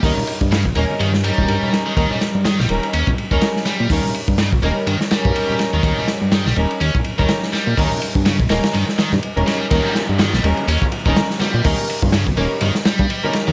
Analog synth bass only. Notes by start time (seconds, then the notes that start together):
0.03 D#2
0.41 G2
0.65 A#1
0.76 D#1
1.00 G2
1.38 D#1
1.48 G2
1.97 D#2
2.35 G2
2.59 A#1
2.70 D#1
2.94 D#2
3.31 D#1
3.80 A#2
3.90 D#2
4.28 G2
4.53 A#1
4.63 D#1
4.87 G2
5.25 G2
5.73 D#2
5.83 D#2
6.22 G2
6.46 A#1
6.56 D#1
6.81 D#2
7.19 D#1
7.67 A#2
7.77 D#2
8.15 G2
8.40 A#1
8.51 D#1
8.75 G2
9.12 G2
9.37 D#1
9.71 D#2
10.09 G2
10.33 A#1
10.44 D#1
10.68 D#2
11.06 D#1
11.54 A#2
11.65 D#2
12.03 G2
12.27 A#1
12.37 D#1
12.61 G2
12.99 G2
13.48 D#2